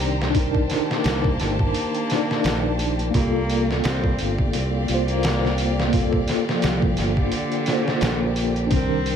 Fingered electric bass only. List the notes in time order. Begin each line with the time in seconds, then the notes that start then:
Already playing: C2
1.05 C2
1.41 G1
2.44 A#1
3.15 C2
3.85 C2
4.20 G1
4.55 C2
4.89 C2
6.64 C2
6.98 G1
8.02 A#1
8.72 C2